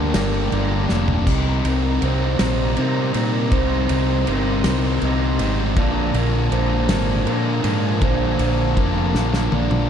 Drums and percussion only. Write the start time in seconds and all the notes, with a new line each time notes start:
0.14 snare, ride
0.52 ride
0.89 snare
1.08 floor tom
1.27 kick, crash, splash
1.65 ride
2.02 ride
2.39 snare, ride
2.77 ride
3.14 ride
3.52 kick, ride
3.89 ride
4.27 ride
4.64 snare, ride
5.01 ride
5.39 ride
5.76 kick, ride
6.14 ride
6.52 ride
6.89 snare, ride
7.27 ride
7.64 ride
8.02 kick, ride
8.39 ride
8.77 kick, ride
9.15 snare
9.34 snare
9.52 high tom
9.71 mid tom